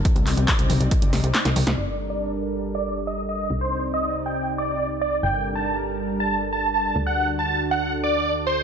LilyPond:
<<
  \new Staff \with { instrumentName = "Supersaw synth" } { \time 4/4 \key g \minor \tempo 4 = 139 r1 | d''8 r16 d''8 r4 d''8 r16 ees''16 r16 ees''8 | r16 c''8 r16 ees''8 r16 g''8 r16 d''8. r16 d''16 r16 | g''8 r16 a''8 r4 a''8 r16 a''16 r16 a''8 |
r16 fis''8 r16 a''8 r16 fis''8 r16 d''8. r16 c''16 r16 | }
  \new Staff \with { instrumentName = "Analog synth pad" } { \time 4/4 \key g \minor << { <c ees' d''>1 | <g a' bes'>1 | <c ees' d''>1 | <g a' bes'>1 |
<d fis'>1 | } \\ { c'1 | d'1 | c'1 | d'1~ |
d'1 | } >> }
  \new Staff \with { instrumentName = "Analog synth bass" } { \clef bass \time 4/4 \key g \minor r16 c,16 c,16 c,16 r16 c,16 c,16 c,16 r16 g,,16 c,16 c,16 r16 c,16 c,16 c,16 | g,,1 | c,1 | g,,1 |
d,1 | }
  \new DrumStaff \with { instrumentName = "Drums" } \drummode { \time 4/4 <hh bd>16 hh16 <hc hho>16 hh16 <hc hh bd>16 hh16 <hho toml>16 hh16 <hh bd>16 <hh toml>16 <hho sn>16 hh16 <hc hh sn>16 <hh sn>16 <hho toml>16 <hh sn>16 | r4 r4 r4 r4 | r4 r4 r4 r4 | r4 r4 r4 r4 |
r4 r4 r4 r4 | }
>>